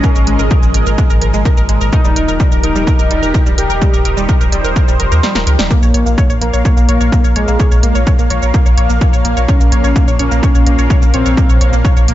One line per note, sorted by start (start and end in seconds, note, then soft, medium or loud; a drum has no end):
0.00 5.69 A#2 medium
0.00 5.69 F3 medium
0.00 1.89 G#3 medium
0.00 0.42 C#4 loud
0.00 1.89 G#4 medium
0.00 1.89 A#4 medium
0.00 0.09 A#4 medium
0.00 1.89 D#5 medium
0.00 kick loud
0.00 shaker medium
0.15 0.24 G#1 medium
0.15 0.19 A#4 medium
0.15 shaker medium
0.27 0.36 G#1 loud
0.27 0.30 G#3 medium
0.27 closed hi-hat loud
0.39 0.48 G#1 medium
0.39 0.44 A#4 medium
0.39 shaker medium
0.51 0.54 A#4 medium
0.51 kick loud
0.51 shaker medium
0.63 0.72 G#1 medium
0.63 0.66 G#3 medium
0.63 shaker medium
0.74 0.84 G#1 loud
0.74 0.80 A#4 medium
0.74 closed hi-hat loud
0.86 0.95 G#1 medium
0.86 0.90 A#4 medium
0.86 shaker medium
0.98 1.01 G#3 medium
0.98 kick loud
0.98 shaker medium
1.10 1.19 G#1 medium
1.10 1.15 A#4 medium
1.10 shaker medium
1.22 1.31 G#1 loud
1.22 1.25 A#4 medium
1.22 closed hi-hat loud
1.34 1.43 G#1 medium
1.34 1.37 G#3 medium
1.34 shaker medium
1.45 1.51 A#4 medium
1.45 kick loud
1.45 shaker medium
1.57 1.66 G#1 medium
1.57 1.60 A#4 medium
1.57 shaker medium
1.69 1.78 G#1 loud
1.69 1.72 G#3 medium
1.69 closed hi-hat loud
1.81 1.90 G#1 loud
1.81 1.86 A#4 medium
1.81 shaker medium
1.93 2.54 D#4 loud
1.93 5.67 D#4 medium
1.93 5.67 G4 medium
1.93 3.80 A#4 medium
1.93 1.96 A#4 medium
1.93 kick loud
1.93 shaker medium
2.04 2.13 D#1 medium
2.04 2.08 G3 medium
2.04 shaker medium
2.16 2.25 D#1 loud
2.16 2.22 A#4 medium
2.16 closed hi-hat loud
2.28 2.37 D#1 medium
2.28 2.31 A#4 medium
2.28 shaker medium
2.40 2.43 G3 medium
2.40 kick loud
2.40 shaker medium
2.52 2.61 D#1 medium
2.52 2.57 A#4 medium
2.52 shaker medium
2.63 2.73 D#1 loud
2.63 3.49 D#4 loud
2.63 2.67 A#4 medium
2.63 closed hi-hat loud
2.75 2.84 D#1 loud
2.75 2.79 G3 medium
2.75 shaker medium
2.87 2.92 A#4 medium
2.87 kick loud
2.87 shaker medium
2.99 3.08 D#1 medium
2.99 3.02 A#4 medium
2.99 shaker medium
3.11 3.20 D#1 loud
3.11 3.14 G3 medium
3.11 closed hi-hat loud
3.23 3.32 D#1 medium
3.23 3.28 A#4 medium
3.23 shaker medium
3.34 3.37 A#4 medium
3.34 kick loud
3.34 shaker medium
3.46 3.55 D#1 medium
3.46 3.49 G3 medium
3.46 shaker medium
3.58 3.67 D#1 loud
3.58 4.20 G4 loud
3.58 3.63 A#4 medium
3.58 closed hi-hat loud
3.70 3.79 D#1 loud
3.70 3.73 A#4 medium
3.70 shaker medium
3.81 3.85 G3 medium
3.81 5.69 C5 medium
3.81 kick loud
3.81 shaker medium
3.93 4.02 D#1 medium
3.93 3.99 A#4 medium
3.93 shaker medium
4.05 4.14 D#1 loud
4.05 4.08 A#4 medium
4.05 closed hi-hat loud
4.17 4.26 D#1 medium
4.17 4.20 G3 medium
4.17 shaker medium
4.29 4.34 A#4 medium
4.29 kick loud
4.29 shaker medium
4.41 4.50 D#1 medium
4.41 4.44 A#4 medium
4.41 shaker medium
4.52 4.62 D#1 loud
4.52 4.56 G3 medium
4.52 closed hi-hat loud
4.64 4.73 D#1 loud
4.64 4.69 A#4 medium
4.64 shaker medium
4.76 4.79 A#4 medium
4.76 kick loud
4.76 shaker medium
4.88 4.97 D#1 medium
4.88 4.91 G3 medium
4.88 shaker medium
4.99 5.09 F1 loud
4.99 5.05 A#4 medium
4.99 closed hi-hat loud
5.11 5.20 D#2 medium
5.11 5.15 A#4 medium
5.11 shaker medium
5.23 5.27 G3 medium
5.23 snare medium
5.23 shaker medium
5.35 5.44 D#1 medium
5.35 5.40 A#4 medium
5.35 snare medium
5.35 shaker medium
5.47 5.56 C#2 loud
5.47 5.50 A#4 medium
5.47 closed hi-hat loud
5.59 5.68 D#1 loud
5.59 5.62 G3 medium
5.59 snare medium
5.59 shaker medium
5.70 12.14 A#2 medium
5.70 12.14 F3 medium
5.70 12.14 A#3 medium
5.70 6.32 A#3 loud
5.70 5.74 A#3 medium
5.70 12.14 A#4 medium
5.70 12.14 F5 medium
5.70 kick loud
5.70 shaker medium
5.82 5.91 A#1 medium
5.82 5.88 C#5 medium
5.82 shaker medium
5.94 6.03 A#1 loud
5.94 5.97 C#5 medium
5.94 closed hi-hat loud
6.06 6.15 A#1 medium
6.06 6.09 A#3 medium
6.06 shaker medium
6.18 6.23 C#5 medium
6.18 kick loud
6.18 shaker medium
6.30 6.39 A#1 medium
6.30 6.33 C#5 medium
6.30 shaker medium
6.41 6.50 A#1 loud
6.41 6.45 A#3 medium
6.41 7.27 A#3 loud
6.41 closed hi-hat loud
6.53 6.62 A#1 loud
6.53 6.58 C#5 medium
6.53 shaker medium
6.65 6.68 C#5 medium
6.65 kick loud
6.65 shaker medium
6.77 6.86 A#1 medium
6.77 6.80 A#3 medium
6.77 shaker medium
6.89 6.98 A#1 loud
6.89 6.94 C#5 medium
6.89 closed hi-hat loud
7.01 7.09 A#1 medium
7.01 7.04 C#5 medium
7.01 shaker medium
7.12 7.15 A#3 medium
7.12 kick loud
7.12 shaker medium
7.24 7.33 A#1 medium
7.24 7.29 C#5 medium
7.24 shaker medium
7.36 7.45 A#1 loud
7.36 7.97 G#3 loud
7.36 7.39 C#5 medium
7.36 closed hi-hat loud
7.48 7.57 A#1 medium
7.48 7.51 A#3 medium
7.48 shaker medium
7.60 7.65 C#5 medium
7.60 kick loud
7.60 shaker medium
7.72 7.80 A#1 medium
7.72 7.75 C#5 medium
7.72 shaker medium
7.83 7.92 A#1 loud
7.83 7.86 A#3 medium
7.83 closed hi-hat loud
7.95 8.04 A#1 medium
7.95 8.00 C#5 medium
7.95 shaker medium
8.07 8.10 C#5 medium
8.07 kick loud
8.07 shaker medium
8.19 8.28 A#1 medium
8.19 8.22 A#3 medium
8.19 shaker medium
8.30 8.40 A#1 loud
8.30 8.36 C#5 medium
8.30 closed hi-hat loud
8.42 8.51 A#1 medium
8.42 8.46 C#5 medium
8.42 shaker medium
8.54 8.57 A#3 medium
8.54 kick loud
8.54 shaker medium
8.66 8.75 A#1 medium
8.66 8.71 C#5 medium
8.66 shaker medium
8.78 8.87 A#1 loud
8.78 8.81 C#5 medium
8.78 closed hi-hat loud
8.90 8.98 A#1 medium
8.90 8.93 A#3 medium
8.90 shaker medium
9.01 9.06 C#5 medium
9.01 kick loud
9.01 shaker medium
9.13 9.22 A#1 medium
9.13 9.16 C#5 medium
9.13 shaker medium
9.25 9.34 A#1 loud
9.25 9.28 A#3 medium
9.25 closed hi-hat loud
9.37 9.46 A#1 loud
9.37 9.42 C#5 medium
9.37 shaker medium
9.48 10.10 C#4 loud
9.48 9.52 C#5 medium
9.48 kick loud
9.48 shaker medium
9.60 9.69 A#1 medium
9.60 9.63 A#3 medium
9.60 shaker medium
9.72 9.81 A#1 loud
9.72 9.77 C#5 medium
9.72 closed hi-hat loud
9.84 9.93 A#1 medium
9.84 9.87 C#5 medium
9.84 shaker medium
9.96 9.99 A#3 medium
9.96 kick loud
9.96 shaker medium
10.08 10.17 A#1 medium
10.08 10.13 C#5 medium
10.08 shaker medium
10.19 10.28 A#1 loud
10.19 11.05 C#4 loud
10.19 10.22 C#5 medium
10.19 closed hi-hat loud
10.31 10.40 A#1 medium
10.31 10.34 A#3 medium
10.31 shaker medium
10.43 10.48 C#5 medium
10.43 kick loud
10.43 shaker medium
10.55 10.64 A#1 medium
10.55 10.58 C#5 medium
10.55 shaker medium
10.67 10.76 A#1 loud
10.67 10.70 A#3 medium
10.67 closed hi-hat loud
10.79 10.87 A#1 medium
10.79 10.84 C#5 medium
10.79 shaker medium
10.90 10.93 C#5 medium
10.90 kick loud
10.90 shaker medium
11.02 11.11 A#1 medium
11.02 11.05 A#3 medium
11.02 shaker medium
11.14 11.23 A#1 loud
11.14 11.75 C4 loud
11.14 11.19 C#5 medium
11.14 closed hi-hat loud
11.26 11.35 A#1 loud
11.26 11.29 C#5 medium
11.26 shaker medium
11.37 11.41 A#3 medium
11.37 kick loud
11.37 shaker medium
11.49 11.58 A#1 medium
11.49 11.54 C#5 medium
11.49 shaker medium
11.61 11.70 A#1 loud
11.61 11.64 C#5 medium
11.61 closed hi-hat loud
11.73 11.82 A#1 medium
11.73 11.76 A#3 medium
11.73 shaker medium
11.85 11.90 C#5 medium
11.85 kick loud
11.85 shaker medium
11.97 12.06 A#1 medium
11.97 12.00 C#5 medium
11.97 shaker medium
12.08 12.14 A#1 loud
12.08 12.11 A#3 medium
12.08 closed hi-hat loud